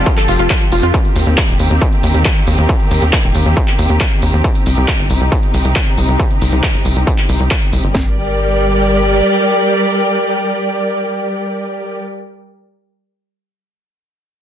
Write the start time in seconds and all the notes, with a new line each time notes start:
Already playing: F3 C4 G4 A4
0.06 F4, kick, closed hi-hat
0.17 A4, clap, closed hi-hat
0.28 F1 F4, open hi-hat
0.39 F1 F4, closed hi-hat
0.50 kick, clap, closed hi-hat
0.61 closed hi-hat
0.72 F1 F4, open hi-hat
0.83 F2 F4, closed hi-hat
0.94 D#3 A#3, kick, closed hi-hat
1.05 closed hi-hat
1.16 D#2, open hi-hat
1.27 D#2, closed hi-hat
1.38 kick, clap, closed hi-hat
1.49 D#1, closed hi-hat
1.60 D#2, open hi-hat
1.70 D#2, closed hi-hat
1.81 kick, closed hi-hat
1.92 closed hi-hat
2.03 D#2, open hi-hat
2.14 D#2, closed hi-hat
2.25 kick, clap, closed hi-hat
2.36 closed hi-hat
2.47 D#2, open hi-hat
2.58 D#2, closed hi-hat
2.69 kick, closed hi-hat
2.80 closed hi-hat
2.91 D#2, open hi-hat
3.02 D#2, closed hi-hat
3.13 kick, clap, closed hi-hat
3.24 D#1, closed hi-hat
3.35 D#2, open hi-hat
3.46 D#2, closed hi-hat
3.57 kick, closed hi-hat
3.68 clap, closed hi-hat
3.79 D#2, open hi-hat
3.90 D#2, closed hi-hat
4.00 kick, clap, closed hi-hat
4.11 closed hi-hat
4.22 D#2, open hi-hat
4.33 D#2, closed hi-hat
4.44 C3 D#4, kick, closed hi-hat
4.55 closed hi-hat
4.66 C2, open hi-hat
4.77 C2, closed hi-hat
4.88 kick, clap, closed hi-hat
4.99 G1, closed hi-hat
5.10 C2, open hi-hat
5.21 C2, closed hi-hat
5.32 kick, closed hi-hat
5.43 closed hi-hat
5.54 C2, open hi-hat
5.65 C2, closed hi-hat
5.76 kick, clap, closed hi-hat
5.87 closed hi-hat
5.98 C2, open hi-hat
6.08 C2, closed hi-hat
6.20 kick, closed hi-hat
6.31 closed hi-hat
6.41 C2, open hi-hat
6.52 C2, closed hi-hat
6.63 kick, clap, closed hi-hat
6.74 G1, closed hi-hat
6.85 C2, open hi-hat
6.96 C2, closed hi-hat
7.07 kick, closed hi-hat
7.18 clap, closed hi-hat
7.29 C2, open hi-hat
7.40 C2, closed hi-hat
7.51 kick, clap, closed hi-hat
7.62 closed hi-hat
7.73 C2, open hi-hat
7.84 G1, closed hi-hat
7.95 G1 G3 G4 A#4 D5, kick, snare